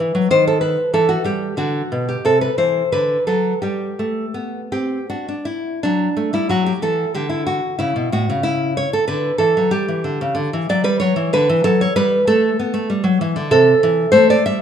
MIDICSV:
0, 0, Header, 1, 2, 480
1, 0, Start_track
1, 0, Key_signature, 1, "major"
1, 0, Tempo, 649351
1, 1170, Time_signature, 3, 2, 24, 8
1, 2147, Tempo, 723764
1, 4066, Key_signature, 2, "major"
1, 4067, Tempo, 674916
1, 4547, Tempo, 643777
1, 8387, Tempo, 628931
1, 10672, End_track
2, 0, Start_track
2, 0, Title_t, "Nylon-string guitar"
2, 0, Program_c, 0, 24
2, 0, Note_on_c, 0, 52, 61
2, 0, Note_on_c, 0, 71, 81
2, 105, Note_off_c, 0, 52, 0
2, 108, Note_on_c, 0, 54, 64
2, 205, Note_off_c, 0, 71, 0
2, 217, Note_off_c, 0, 54, 0
2, 226, Note_on_c, 0, 51, 65
2, 229, Note_on_c, 0, 72, 87
2, 342, Note_off_c, 0, 72, 0
2, 351, Note_on_c, 0, 69, 68
2, 447, Note_off_c, 0, 69, 0
2, 450, Note_on_c, 0, 71, 73
2, 563, Note_off_c, 0, 51, 0
2, 679, Note_off_c, 0, 71, 0
2, 691, Note_on_c, 0, 52, 61
2, 693, Note_on_c, 0, 69, 73
2, 804, Note_on_c, 0, 66, 68
2, 810, Note_off_c, 0, 69, 0
2, 862, Note_off_c, 0, 52, 0
2, 920, Note_on_c, 0, 55, 59
2, 924, Note_off_c, 0, 66, 0
2, 927, Note_on_c, 0, 67, 74
2, 1097, Note_off_c, 0, 55, 0
2, 1159, Note_off_c, 0, 67, 0
2, 1161, Note_on_c, 0, 50, 64
2, 1166, Note_on_c, 0, 66, 79
2, 1340, Note_off_c, 0, 50, 0
2, 1418, Note_on_c, 0, 47, 61
2, 1519, Note_off_c, 0, 66, 0
2, 1542, Note_on_c, 0, 67, 67
2, 1591, Note_off_c, 0, 47, 0
2, 1660, Note_off_c, 0, 67, 0
2, 1661, Note_on_c, 0, 48, 60
2, 1666, Note_on_c, 0, 69, 79
2, 1781, Note_off_c, 0, 69, 0
2, 1784, Note_on_c, 0, 71, 68
2, 1834, Note_off_c, 0, 48, 0
2, 1902, Note_off_c, 0, 71, 0
2, 1905, Note_on_c, 0, 52, 55
2, 1908, Note_on_c, 0, 72, 68
2, 2082, Note_off_c, 0, 52, 0
2, 2141, Note_off_c, 0, 72, 0
2, 2159, Note_on_c, 0, 50, 54
2, 2160, Note_on_c, 0, 71, 70
2, 2322, Note_off_c, 0, 50, 0
2, 2376, Note_off_c, 0, 71, 0
2, 2388, Note_on_c, 0, 69, 66
2, 2391, Note_on_c, 0, 54, 54
2, 2559, Note_off_c, 0, 54, 0
2, 2614, Note_off_c, 0, 69, 0
2, 2620, Note_on_c, 0, 67, 64
2, 2627, Note_on_c, 0, 55, 55
2, 2797, Note_off_c, 0, 55, 0
2, 2868, Note_on_c, 0, 57, 54
2, 3037, Note_off_c, 0, 57, 0
2, 3101, Note_on_c, 0, 59, 55
2, 3275, Note_off_c, 0, 59, 0
2, 3342, Note_off_c, 0, 67, 0
2, 3350, Note_on_c, 0, 60, 51
2, 3351, Note_on_c, 0, 67, 65
2, 3523, Note_off_c, 0, 60, 0
2, 3580, Note_off_c, 0, 67, 0
2, 3600, Note_on_c, 0, 62, 52
2, 3600, Note_on_c, 0, 66, 58
2, 3715, Note_off_c, 0, 66, 0
2, 3718, Note_off_c, 0, 62, 0
2, 3726, Note_on_c, 0, 62, 59
2, 3836, Note_on_c, 0, 64, 65
2, 3839, Note_off_c, 0, 62, 0
2, 4060, Note_off_c, 0, 64, 0
2, 4090, Note_on_c, 0, 62, 76
2, 4101, Note_on_c, 0, 54, 63
2, 4262, Note_off_c, 0, 54, 0
2, 4327, Note_on_c, 0, 57, 60
2, 4425, Note_off_c, 0, 62, 0
2, 4432, Note_off_c, 0, 57, 0
2, 4444, Note_on_c, 0, 55, 57
2, 4449, Note_on_c, 0, 64, 67
2, 4549, Note_off_c, 0, 55, 0
2, 4557, Note_off_c, 0, 64, 0
2, 4561, Note_on_c, 0, 54, 62
2, 4568, Note_on_c, 0, 66, 76
2, 4680, Note_off_c, 0, 66, 0
2, 4688, Note_on_c, 0, 67, 69
2, 4732, Note_off_c, 0, 54, 0
2, 4801, Note_off_c, 0, 67, 0
2, 4806, Note_on_c, 0, 52, 58
2, 4809, Note_on_c, 0, 69, 73
2, 4973, Note_off_c, 0, 52, 0
2, 5031, Note_off_c, 0, 69, 0
2, 5047, Note_on_c, 0, 50, 61
2, 5051, Note_on_c, 0, 67, 73
2, 5156, Note_off_c, 0, 67, 0
2, 5158, Note_on_c, 0, 64, 62
2, 5271, Note_off_c, 0, 64, 0
2, 5286, Note_on_c, 0, 66, 72
2, 5382, Note_off_c, 0, 50, 0
2, 5504, Note_off_c, 0, 66, 0
2, 5525, Note_on_c, 0, 64, 79
2, 5532, Note_on_c, 0, 49, 64
2, 5632, Note_off_c, 0, 49, 0
2, 5653, Note_on_c, 0, 47, 57
2, 5744, Note_off_c, 0, 64, 0
2, 5752, Note_off_c, 0, 47, 0
2, 5777, Note_on_c, 0, 45, 61
2, 5781, Note_on_c, 0, 66, 80
2, 5874, Note_off_c, 0, 45, 0
2, 5905, Note_on_c, 0, 49, 62
2, 5990, Note_off_c, 0, 66, 0
2, 6007, Note_on_c, 0, 64, 82
2, 6223, Note_off_c, 0, 64, 0
2, 6259, Note_on_c, 0, 73, 82
2, 6321, Note_off_c, 0, 49, 0
2, 6360, Note_off_c, 0, 73, 0
2, 6380, Note_on_c, 0, 69, 78
2, 6482, Note_off_c, 0, 69, 0
2, 6487, Note_on_c, 0, 71, 80
2, 6492, Note_on_c, 0, 50, 59
2, 6656, Note_off_c, 0, 50, 0
2, 6708, Note_off_c, 0, 71, 0
2, 6716, Note_on_c, 0, 69, 83
2, 6723, Note_on_c, 0, 52, 61
2, 6829, Note_off_c, 0, 52, 0
2, 6854, Note_on_c, 0, 54, 64
2, 6941, Note_off_c, 0, 69, 0
2, 6954, Note_off_c, 0, 54, 0
2, 6960, Note_on_c, 0, 55, 68
2, 6960, Note_on_c, 0, 67, 87
2, 7066, Note_off_c, 0, 55, 0
2, 7089, Note_on_c, 0, 52, 63
2, 7191, Note_off_c, 0, 52, 0
2, 7207, Note_on_c, 0, 50, 63
2, 7310, Note_off_c, 0, 50, 0
2, 7333, Note_on_c, 0, 49, 69
2, 7433, Note_off_c, 0, 49, 0
2, 7434, Note_on_c, 0, 50, 70
2, 7542, Note_off_c, 0, 50, 0
2, 7573, Note_on_c, 0, 52, 66
2, 7639, Note_off_c, 0, 67, 0
2, 7671, Note_off_c, 0, 52, 0
2, 7693, Note_on_c, 0, 54, 65
2, 7695, Note_on_c, 0, 74, 89
2, 7791, Note_off_c, 0, 54, 0
2, 7796, Note_off_c, 0, 74, 0
2, 7801, Note_on_c, 0, 55, 68
2, 7804, Note_on_c, 0, 71, 86
2, 7905, Note_off_c, 0, 55, 0
2, 7912, Note_off_c, 0, 71, 0
2, 7919, Note_on_c, 0, 73, 86
2, 7929, Note_on_c, 0, 54, 65
2, 8030, Note_off_c, 0, 54, 0
2, 8041, Note_on_c, 0, 52, 68
2, 8143, Note_off_c, 0, 73, 0
2, 8147, Note_off_c, 0, 52, 0
2, 8167, Note_on_c, 0, 50, 70
2, 8171, Note_on_c, 0, 71, 89
2, 8271, Note_off_c, 0, 50, 0
2, 8290, Note_on_c, 0, 52, 72
2, 8390, Note_off_c, 0, 71, 0
2, 8392, Note_off_c, 0, 52, 0
2, 8400, Note_on_c, 0, 54, 77
2, 8400, Note_on_c, 0, 69, 107
2, 8513, Note_off_c, 0, 69, 0
2, 8530, Note_on_c, 0, 73, 91
2, 8570, Note_off_c, 0, 54, 0
2, 8639, Note_off_c, 0, 73, 0
2, 8641, Note_on_c, 0, 55, 69
2, 8643, Note_on_c, 0, 71, 100
2, 8810, Note_off_c, 0, 55, 0
2, 8866, Note_off_c, 0, 71, 0
2, 8882, Note_on_c, 0, 57, 77
2, 8884, Note_on_c, 0, 69, 91
2, 9049, Note_off_c, 0, 57, 0
2, 9105, Note_off_c, 0, 69, 0
2, 9127, Note_on_c, 0, 59, 71
2, 9230, Note_off_c, 0, 59, 0
2, 9236, Note_on_c, 0, 57, 73
2, 9343, Note_off_c, 0, 57, 0
2, 9358, Note_on_c, 0, 55, 67
2, 9463, Note_off_c, 0, 55, 0
2, 9465, Note_on_c, 0, 54, 70
2, 9577, Note_off_c, 0, 54, 0
2, 9597, Note_on_c, 0, 52, 74
2, 9703, Note_off_c, 0, 52, 0
2, 9711, Note_on_c, 0, 50, 75
2, 9821, Note_off_c, 0, 50, 0
2, 9826, Note_on_c, 0, 48, 80
2, 9828, Note_on_c, 0, 69, 99
2, 9997, Note_off_c, 0, 48, 0
2, 10071, Note_on_c, 0, 52, 77
2, 10238, Note_off_c, 0, 52, 0
2, 10281, Note_off_c, 0, 69, 0
2, 10289, Note_on_c, 0, 72, 105
2, 10296, Note_on_c, 0, 57, 76
2, 10413, Note_off_c, 0, 72, 0
2, 10430, Note_on_c, 0, 74, 87
2, 10471, Note_off_c, 0, 57, 0
2, 10546, Note_off_c, 0, 74, 0
2, 10549, Note_on_c, 0, 55, 70
2, 10549, Note_on_c, 0, 76, 96
2, 10667, Note_off_c, 0, 76, 0
2, 10672, Note_off_c, 0, 55, 0
2, 10672, End_track
0, 0, End_of_file